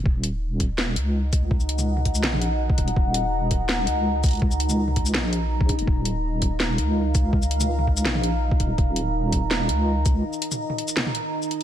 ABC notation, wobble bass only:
X:1
M:4/4
L:1/16
Q:1/4=165
K:Ebm
V:1 name="Wobble bass" clef=bass
E,,,8- E,,,2 D,,6- | D,,8 B,,,4- B,,, z E,,,2 | E,,,8- E,,,2 D,,6- | D,,8 B,,,6- B,,, F,,, |
E,,,8- E,,,2 D,,6- | D,,8 B,,,4- B,,, z E,,,2 | E,,,8- E,,,2 D,,6 | z16 |]